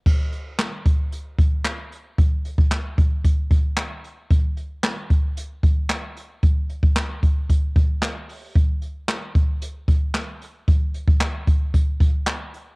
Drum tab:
CC |x---------------|----------------|----------------|----------------|
HH |--x---x-x-x-x-x-|x-x-x-x-x-x-x-x-|x-x-x-x-x-x-x-x-|x-x-x-x-x-x-x-o-|
CP |----x-------x---|----x-------x---|----x-------x---|----x-------x---|
SD |----o-------o---|----o-------o---|----o-------o---|----o-------o---|
BD |o-----o---o-----|o--o--o-o-o-----|o-----o---o-----|o--o--o-o-o-----|

CC |----------------|----------------|
HH |x-x-x-x-x-x-x-x-|x-x-x-x-x-x-x-x-|
CP |----x-------x---|----x-------x---|
SD |----o-------o---|----o-------o---|
BD |o-----o---o-----|o--o--o-o-o-----|